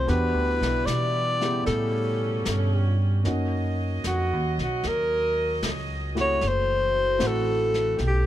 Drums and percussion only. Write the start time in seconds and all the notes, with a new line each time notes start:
0.08 brush sweep, snare
0.62 snare
0.87 snare, hi-hat pedal
1.41 snare
1.66 brush sweep, snare
2.45 snare, hi-hat pedal
3.25 brush sweep, snare
4.04 snare, hi-hat pedal
4.59 snare
4.83 brush sweep, snare
5.63 snare, hi-hat pedal
6.17 snare
6.41 brush sweep, snare
7.20 snare, hi-hat pedal
7.74 snare
7.98 brush sweep, snare